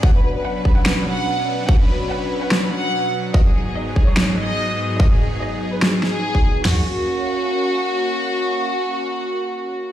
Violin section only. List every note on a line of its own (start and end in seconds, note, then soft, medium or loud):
0.03 0.10 F#5 medium
0.14 0.20 B4 medium
0.24 0.31 B4 medium
0.35 0.41 B4 medium
0.45 0.51 F#5 medium
0.55 0.61 B4 medium
0.65 0.72 B4 medium
0.76 0.82 F#5 medium
0.86 0.93 B4 medium
0.97 1.03 B4 medium
1.07 1.61 F#5 loud
1.69 1.75 F#5 medium
1.80 1.86 B4 medium
1.89 1.96 B4 medium
2.00 2.06 B4 medium
2.10 2.17 F#5 medium
2.21 2.27 B4 medium
2.31 2.37 B4 medium
2.42 2.48 F#5 medium
2.51 2.58 B4 medium
2.62 2.68 B4 medium
2.72 3.26 F#5 loud
3.34 3.41 D#5 medium
3.45 3.51 G#4 medium
3.55 3.62 G#4 medium
3.66 3.72 G#4 medium
3.76 3.82 D#5 medium
3.87 3.92 G#4 medium
3.96 4.03 G#4 medium
4.07 4.13 C#5 medium
4.17 4.24 G#4 medium
4.28 4.34 G#4 medium
4.38 4.92 D#5 loud
5.00 5.06 D#5 medium
5.11 5.17 G#4 medium
5.20 5.27 G#4 medium
5.31 5.37 G#4 medium
5.41 5.48 D#5 medium
5.52 5.58 G#4 medium
5.62 5.68 G#4 medium
5.73 5.79 B4 medium
5.82 5.89 G#4 medium
5.93 5.99 G#4 medium
6.03 6.57 G#4 loud
6.65 9.92 F#4 loud